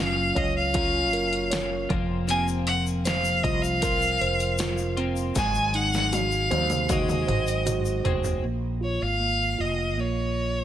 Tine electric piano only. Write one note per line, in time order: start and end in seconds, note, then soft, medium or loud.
0.00 1.86 F#3 medium
0.00 1.09 C#4 medium
0.00 0.73 F4 soft
0.35 1.49 C#5 medium
0.74 1.86 F4 medium
1.13 1.88 A#4 medium
1.51 1.88 C#5 medium
1.89 4.94 F3 medium
2.28 3.78 C4 medium
3.05 4.20 C5 medium
3.44 4.58 F4 medium
3.82 5.32 A#4 medium
4.21 5.33 C5 medium
4.59 5.34 F4 medium
4.98 5.35 C4 medium
5.36 8.40 G#3 medium
5.75 7.25 D#4 soft
6.12 6.88 F#4 medium
6.50 7.26 C5 medium
6.89 7.65 F#4 medium
7.27 8.03 C5 medium
7.66 8.41 F#4 medium
8.05 8.42 C5 soft
8.43 9.19 A#3 soft
8.81 9.57 F4 soft
9.20 9.97 A#3 soft
9.58 10.64 F4 soft
9.98 10.64 A#3 soft